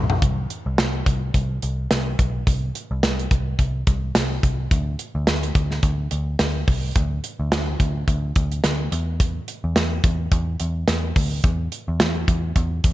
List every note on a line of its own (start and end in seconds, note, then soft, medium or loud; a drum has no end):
0.00 0.17 B1 medium
0.10 floor tom loud
0.22 0.45 C2 medium
0.22 kick medium
0.22 closed hi-hat medium
0.50 closed hi-hat medium
0.66 0.76 C2 medium
0.78 1.02 C2 medium
0.78 snare loud
0.78 closed hi-hat medium
1.06 1.29 C2 medium
1.06 kick medium
1.06 closed hi-hat medium
1.34 1.57 C2 medium
1.34 kick medium
1.34 closed hi-hat medium
1.62 1.86 C2 medium
1.62 closed hi-hat medium
1.91 2.14 C2 medium
1.91 snare medium
1.91 closed hi-hat medium
2.19 2.42 B1 medium
2.19 kick medium
2.19 closed hi-hat medium
2.47 2.70 C2 medium
2.47 kick medium
2.47 closed hi-hat medium
2.75 closed hi-hat medium
2.91 3.01 C2 medium
3.03 3.26 C2 medium
3.03 snare loud
3.03 closed hi-hat medium
3.19 closed hi-hat soft
3.31 3.54 C2 medium
3.31 kick medium
3.31 closed hi-hat medium
3.59 3.82 C2 medium
3.59 kick medium
3.59 closed hi-hat medium
3.87 4.10 C2 medium
3.87 kick medium
3.87 closed hi-hat medium
4.15 4.38 C2 medium
4.15 snare medium
4.15 closed hi-hat medium
4.43 4.66 C2 medium
4.43 kick medium
4.43 closed hi-hat medium
4.71 4.94 D2 medium
4.71 kick medium
4.71 closed hi-hat medium
4.99 closed hi-hat medium
5.15 5.25 D2 medium
5.27 5.50 D2 medium
5.27 snare loud
5.27 closed hi-hat medium
5.43 closed hi-hat soft
5.55 5.78 D2 medium
5.55 kick medium
5.55 closed hi-hat medium
5.71 snare soft
5.83 6.06 D2 medium
5.83 kick medium
5.83 closed hi-hat medium
6.11 6.35 D2 medium
6.11 closed hi-hat medium
6.39 6.63 D2 medium
6.39 snare medium
6.39 closed hi-hat medium
6.68 6.91 C2 medium
6.68 kick medium
6.68 open hi-hat medium
6.96 7.19 D2 medium
6.96 kick loud
6.96 closed hi-hat medium
7.24 closed hi-hat medium
7.40 7.50 D2 medium
7.52 7.75 D2 medium
7.52 snare loud
7.52 closed hi-hat medium
7.80 8.03 D2 medium
7.80 kick medium
7.80 closed hi-hat medium
8.08 8.31 D2 medium
8.08 kick medium
8.08 closed hi-hat medium
8.36 8.59 D2 medium
8.36 kick medium
8.36 closed hi-hat medium
8.52 closed hi-hat soft
8.64 8.87 D2 medium
8.64 snare medium
8.64 closed hi-hat loud
8.92 9.38 E2 medium
8.92 closed hi-hat medium
9.20 kick medium
9.20 closed hi-hat medium
9.48 closed hi-hat medium
9.64 9.74 E2 medium
9.76 9.99 E2 medium
9.76 snare loud
9.76 closed hi-hat medium
10.04 10.27 E2 medium
10.04 kick medium
10.04 closed hi-hat medium
10.32 10.55 E2 medium
10.32 kick medium
10.32 closed hi-hat medium
10.60 10.83 E2 medium
10.60 closed hi-hat medium
10.88 11.11 E2 medium
10.88 snare medium
10.88 closed hi-hat medium
11.16 11.39 D2 medium
11.16 kick medium
11.16 open hi-hat medium
11.44 11.67 E2 medium
11.44 kick loud
11.44 closed hi-hat medium
11.72 closed hi-hat medium
11.88 11.98 E2 loud
12.00 12.24 E2 medium
12.00 snare loud
12.00 closed hi-hat medium
12.28 12.51 E2 medium
12.28 kick medium
12.28 closed hi-hat medium
12.56 12.79 E2 loud
12.56 kick medium
12.56 closed hi-hat medium
12.84 12.93 E2 medium
12.84 kick medium
12.84 closed hi-hat medium